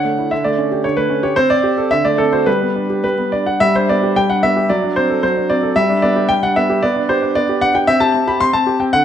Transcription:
0.00 0.30 D3 medium
0.00 0.13 D4 soft
0.00 0.31 F#5 medium
0.05 0.26 A3 soft
0.18 0.32 E4 soft
0.31 0.83 D3 medium
0.31 0.45 E5 medium
0.44 0.66 A3 soft
0.44 0.84 D5 medium
0.58 0.79 C#4 medium
0.72 0.92 G4 soft
0.84 1.36 D3 medium
0.84 0.97 C#5 medium
0.97 1.18 A3 medium
0.97 1.23 B4 medium
1.10 1.31 C#4 medium
1.23 1.37 G4 medium
1.23 1.37 C#5 medium
1.36 1.49 C4 medium
1.36 1.50 C5 loud
1.50 1.72 C4 medium
1.50 1.91 D5 loud
1.63 1.85 G4 medium
1.78 1.91 A4 medium
1.91 2.46 D3 medium
1.91 2.05 E5 loud
2.05 2.27 A3 medium
2.05 2.19 D5 medium
2.18 2.41 C4 medium
2.18 2.33 A4 medium
2.33 2.47 F#4 soft
2.33 2.47 C5 medium
2.46 3.02 G3 medium
2.46 3.02 B4 medium
2.61 2.84 B3 soft
2.76 2.98 D4 medium
2.90 3.13 G4 soft
3.04 3.59 G3 medium
3.04 3.33 B4 medium
3.18 3.41 B3 soft
3.32 3.56 D4 medium
3.32 3.47 D5 medium
3.46 3.61 G4 soft
3.46 3.61 F#5 medium
3.60 4.15 G3 medium
3.60 3.75 E5 loud
3.75 3.97 D4 medium
3.75 3.89 C5 medium
3.89 4.11 B3 medium
3.89 4.16 D5 medium
4.03 4.24 G4 medium
4.16 4.68 G3 medium
4.16 4.29 G5 loud
4.30 4.51 D4 medium
4.30 4.43 F#5 medium
4.43 4.64 B3 medium
4.43 4.69 E5 loud
4.56 4.69 G4 medium
4.70 5.22 F#3 medium
4.70 4.96 D5 medium
4.83 5.04 D4 medium
4.96 5.18 C4 medium
4.96 5.21 C5 medium
5.10 5.31 A4 medium
5.23 5.75 F#3 medium
5.23 5.50 C5 medium
5.37 5.58 D4 medium
5.50 5.71 C4 medium
5.50 5.76 D5 medium
5.63 5.76 A4 medium
5.76 6.28 G3 medium
5.76 6.02 E5 loud
5.89 6.10 D4 medium
6.02 6.24 B3 medium
6.02 6.29 D5 medium
6.16 6.37 G4 medium
6.29 6.80 G3 medium
6.29 6.42 G5 loud
6.43 6.64 D4 medium
6.43 6.56 F#5 medium
6.56 6.77 B3 medium
6.56 6.82 E5 loud
6.70 6.82 G4 medium
6.83 7.34 B3 medium
6.83 7.08 D5 medium
6.96 7.17 D4 medium
7.09 7.30 G4 medium
7.09 7.35 C5 medium
7.22 7.43 D4 medium
7.35 7.86 B3 medium
7.35 7.61 D5 loud
7.49 7.69 G4 medium
7.61 7.82 D4 medium
7.61 7.74 F#5 loud
7.75 7.87 G4 medium
7.75 7.87 G5 medium
7.87 8.13 C4 medium
7.87 8.00 E5 loud
8.00 8.21 G4 medium
8.00 8.27 A5 loud
8.14 8.35 C4 medium
8.27 8.48 G4 medium
8.27 8.40 B5 medium
8.40 8.52 C4 medium
8.40 8.53 C6 loud
8.53 8.75 C4 medium
8.53 8.80 A5 loud
8.67 8.88 G4 medium
8.80 8.93 C4 medium
8.80 8.93 G5 medium
8.93 9.05 D3 medium
8.93 9.05 F#5 loud

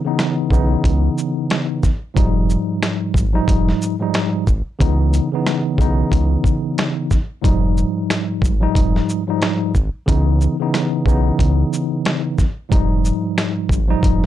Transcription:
0.04 0.48 C#3 medium
0.04 0.49 E3 medium
0.04 0.49 B3 medium
0.04 0.50 D#4 medium
0.19 cross-stick medium
0.19 snare loud
0.19 closed hi-hat medium
0.51 0.76 B1 medium
0.51 1.89 C#3 medium
0.51 1.89 E3 medium
0.51 1.90 B3 medium
0.51 1.90 D#4 loud
0.51 kick medium
0.51 shaker medium
0.84 1.09 C#2 loud
0.84 kick loud
0.84 closed hi-hat medium
1.18 shaker medium
1.50 cross-stick medium
1.50 snare loud
1.50 closed hi-hat medium
1.83 kick medium
1.83 snare soft
1.83 shaker medium
2.14 2.56 F1 loud
2.14 3.23 G#2 medium
2.14 3.23 F3 medium
2.14 3.24 G3 medium
2.14 3.24 D#4 loud
2.14 kick loud
2.14 closed hi-hat medium
2.50 shaker medium
2.83 cross-stick medium
2.83 snare loud
2.83 closed hi-hat medium
3.14 3.40 G#1 loud
3.14 kick medium
3.14 shaker medium
3.32 3.94 G#2 loud
3.32 3.94 F3 medium
3.32 3.94 G3 medium
3.32 3.95 D#4 loud
3.48 3.73 F1 loud
3.48 kick loud
3.48 closed hi-hat medium
3.69 snare soft
3.82 shaker medium
4.00 4.44 G#2 medium
4.00 4.44 F3 medium
4.00 4.45 G3 medium
4.00 4.45 D#4 loud
4.14 cross-stick medium
4.14 snare loud
4.14 closed hi-hat medium
4.47 4.62 G#1 loud
4.47 kick medium
4.47 shaker medium
4.79 5.20 C#2 loud
4.79 5.27 C#3 loud
4.79 5.28 E3 medium
4.79 5.28 B3 medium
4.79 5.29 D#4 loud
4.79 kick loud
4.79 closed hi-hat medium
5.14 closed hi-hat medium
5.14 shaker medium
5.32 5.76 C#3 medium
5.32 5.76 E3 medium
5.32 5.77 B3 medium
5.32 5.77 D#4 medium
5.47 cross-stick medium
5.47 snare loud
5.47 closed hi-hat medium
5.78 6.04 B1 medium
5.78 7.16 C#3 medium
5.78 7.17 E3 medium
5.78 7.17 B3 medium
5.78 7.18 D#4 loud
5.78 kick medium
5.78 closed hi-hat medium
5.78 shaker medium
6.12 6.37 C#2 loud
6.12 kick loud
6.12 closed hi-hat medium
6.44 kick loud
6.44 shaker medium
6.78 cross-stick medium
6.78 snare loud
6.78 closed hi-hat medium
7.11 kick medium
7.11 snare soft
7.11 shaker medium
7.41 7.84 F1 loud
7.41 8.50 G#2 medium
7.41 8.51 F3 medium
7.41 8.51 G3 medium
7.41 8.52 D#4 loud
7.41 kick loud
7.41 closed hi-hat medium
7.78 shaker medium
8.10 cross-stick medium
8.10 snare loud
8.10 closed hi-hat medium
8.42 8.67 G#1 loud
8.42 kick medium
8.42 shaker medium
8.60 9.21 G#2 medium
8.60 9.21 F3 medium
8.60 9.22 G3 medium
8.60 9.22 D#4 loud
8.75 9.01 F1 loud
8.75 kick loud
8.75 closed hi-hat loud
8.96 snare soft
9.10 shaker medium
9.27 9.71 G#2 medium
9.27 9.72 F3 medium
9.27 9.72 G3 medium
9.27 9.73 D#4 loud
9.42 cross-stick medium
9.42 snare loud
9.42 closed hi-hat medium
9.75 9.90 G#1 medium
9.75 kick medium
9.75 shaker medium
10.06 10.48 C#2 loud
10.06 10.55 C#3 loud
10.06 10.55 E3 medium
10.06 10.56 B3 medium
10.06 10.56 D#4 loud
10.06 kick loud
10.06 closed hi-hat medium
10.41 shaker medium
10.60 11.03 C#3 medium
10.60 11.04 E3 medium
10.60 11.04 B3 medium
10.60 11.05 D#4 loud
10.74 cross-stick medium
10.74 snare loud
10.74 closed hi-hat medium
11.06 11.31 B1 medium
11.06 12.44 C#3 medium
11.06 12.44 E3 medium
11.06 12.44 B3 medium
11.06 12.45 D#4 loud
11.06 kick medium
11.06 shaker medium
11.39 11.64 C#2 loud
11.39 kick loud
11.39 closed hi-hat medium
11.73 shaker medium
12.05 cross-stick medium
12.05 snare loud
12.05 closed hi-hat medium
12.38 kick medium
12.38 snare soft
12.38 shaker medium
12.69 13.12 F1 loud
12.69 13.78 G#2 medium
12.69 13.78 F3 medium
12.69 13.79 G3 medium
12.69 13.79 D#4 loud
12.69 kick loud
12.69 closed hi-hat medium
13.05 shaker medium
13.38 cross-stick medium
13.38 snare loud
13.38 closed hi-hat medium
13.69 13.95 G#1 loud
13.69 kick medium
13.69 shaker medium
13.87 14.26 G#2 medium
13.87 14.26 F3 medium
13.87 14.26 G3 medium
13.87 14.26 D#4 loud
14.03 14.26 F1 loud
14.03 kick loud
14.03 closed hi-hat loud

